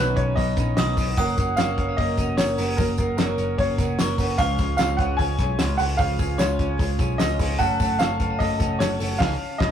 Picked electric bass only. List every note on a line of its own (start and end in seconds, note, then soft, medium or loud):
0.00 0.13 B1 loud
0.17 0.33 B1 loud
0.37 0.54 B1 loud
0.57 0.73 A#1 medium
0.78 0.94 B1 loud
0.97 1.14 B1 loud
1.18 1.34 F#1 loud
1.38 1.54 F#1 loud
1.58 1.74 F#1 loud
1.78 1.94 F#1 medium
1.98 2.14 F#1 loud
2.18 2.34 F1 loud
2.38 2.54 F#1 loud
2.58 2.75 F#1 loud
2.78 2.95 F#1 loud
2.98 3.15 F#1 loud
3.19 3.35 F#1 loud
3.38 3.55 F#1 loud
3.59 3.75 F#1 loud
3.78 3.95 F1 medium
3.99 4.15 F#1 loud
4.18 4.35 F#1 loud
4.39 4.55 C#2 loud
4.59 4.75 C#2 loud
4.79 4.95 C#2 loud
4.99 5.15 C#2 loud
5.19 5.35 C#2 loud
5.39 5.55 B1 loud
5.59 5.76 C#2 loud
5.79 5.95 C#2 loud
5.99 6.16 C#2 loud
6.19 6.36 C#2 loud
6.39 6.55 C#2 medium
6.59 6.76 C#2 medium
6.79 6.96 C#2 loud
6.99 7.16 B1 medium
7.19 7.36 C#2 loud
7.39 7.56 C#2 loud
7.60 7.76 F#1 loud
7.80 7.97 F#1 loud
8.00 8.16 F#1 loud
8.20 8.36 F#1 loud
8.40 8.57 F#1 loud
8.60 8.77 F1 medium
8.80 8.97 F#1 loud
9.00 9.17 F#1 loud
9.20 9.34 C#2 loud
9.61 9.71 C#2 loud